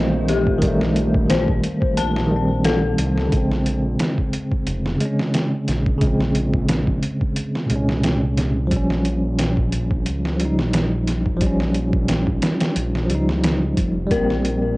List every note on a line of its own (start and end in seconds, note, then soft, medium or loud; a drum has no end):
0.00 1.61 A#1 medium
0.00 0.56 D#3 medium
0.00 0.59 G3 medium
0.00 3.28 A3 medium
0.00 0.61 C4 medium
0.00 3.28 D#4 medium
0.00 2.65 A4 medium
0.00 3.28 C5 medium
0.00 0.26 D#5 medium
0.00 3.28 F5 medium
0.28 0.61 G4 medium
0.28 snare soft
0.28 closed hi-hat medium
0.47 kick medium
0.58 2.25 D#3 medium
0.58 closed hi-hat medium
0.62 2.28 G3 medium
0.62 kick loud
0.68 2.30 A3 loud
0.81 snare medium
0.96 closed hi-hat medium
1.14 kick loud
1.30 1.62 C5 medium
1.30 snare loud
1.30 closed hi-hat medium
1.48 kick medium
1.64 closed hi-hat medium
1.82 kick loud
1.97 2.65 A#1 medium
1.97 2.62 A5 medium
1.97 closed hi-hat medium
2.16 snare medium
2.26 3.26 D#3 medium
2.31 3.29 G3 medium
2.36 3.31 C4 medium
2.65 2.95 A#1 medium
2.65 2.97 A4 medium
2.65 snare loud
2.65 closed hi-hat medium
2.98 3.29 C2 loud
2.98 closed hi-hat medium
3.18 snare soft
3.28 4.95 C#3 medium
3.32 3.97 A#1 loud
3.32 4.97 G#3 medium
3.32 kick medium
3.32 closed hi-hat medium
3.37 5.00 C4 medium
3.51 snare soft
3.66 closed hi-hat medium
3.99 snare loud
3.99 closed hi-hat medium
4.18 kick medium
4.33 closed hi-hat medium
4.51 kick medium
4.67 4.97 F1 medium
4.67 closed hi-hat medium
4.86 snare soft
4.96 5.96 C#3 medium
5.00 5.98 G#3 medium
5.00 closed hi-hat medium
5.05 6.01 C#4 medium
5.19 snare medium
5.34 snare loud
5.34 closed hi-hat medium
5.68 5.98 A#1 medium
5.68 snare soft
5.68 closed hi-hat medium
5.86 kick medium
5.98 7.65 C#3 medium
5.98 kick loud
5.98 closed hi-hat medium
6.02 6.66 A#1 medium
6.02 7.67 G#3 medium
6.07 7.69 C4 medium
6.21 snare soft
6.35 closed hi-hat medium
6.54 kick medium
6.69 6.99 A#1 medium
6.69 snare loud
6.69 closed hi-hat medium
6.87 kick medium
7.03 closed hi-hat medium
7.21 kick medium
7.36 closed hi-hat medium
7.55 snare soft
7.66 8.66 A#2 medium
7.70 8.73 C2 medium
7.70 8.68 G#3 medium
7.70 closed hi-hat medium
7.76 8.70 C#4 medium
7.89 snare medium
8.04 snare loud
8.04 closed hi-hat medium
8.38 snare soft
8.38 closed hi-hat medium
8.67 10.34 F3 medium
8.71 10.08 A#1 medium
8.71 10.36 G3 medium
8.71 kick medium
8.71 closed hi-hat medium
8.77 10.39 C#4 medium
8.90 snare soft
9.05 closed hi-hat medium
9.39 snare loud
9.39 closed hi-hat medium
9.57 kick medium
9.72 closed hi-hat medium
9.91 kick medium
10.06 10.61 C#2 medium
10.06 closed hi-hat medium
10.25 snare soft
10.36 11.35 F3 medium
10.36 closed hi-hat medium
10.40 11.38 G3 medium
10.45 11.40 D#4 medium
10.59 12.40 A#1 medium
10.59 snare medium
10.73 snare loud
10.73 closed hi-hat medium
11.07 snare soft
11.07 closed hi-hat medium
11.26 kick medium
11.37 13.04 F3 medium
11.41 13.06 G3 medium
11.41 kick loud
11.41 closed hi-hat medium
11.46 13.09 C#4 medium
11.60 snare soft
11.74 closed hi-hat medium
11.93 kick medium
12.08 snare loud
12.08 closed hi-hat medium
12.27 kick medium
12.42 snare loud
12.42 closed hi-hat medium
12.60 snare loud
12.60 closed hi-hat medium
12.76 13.10 A#1 medium
12.76 closed hi-hat medium
12.95 snare soft
13.05 14.05 F3 medium
13.10 13.75 C#2 medium
13.10 14.06 G3 medium
13.10 closed hi-hat medium
13.15 14.10 D#4 medium
13.29 snare medium
13.44 snare loud
13.44 closed hi-hat medium
13.77 14.07 F1 medium
13.77 kick loud
13.77 closed hi-hat medium
14.07 14.77 G3 medium
14.07 kick loud
14.11 14.76 A#1 medium
14.11 14.77 A#3 medium
14.11 14.77 A#4 medium
14.11 closed hi-hat medium
14.16 14.77 C4 medium
14.30 snare soft
14.45 closed hi-hat medium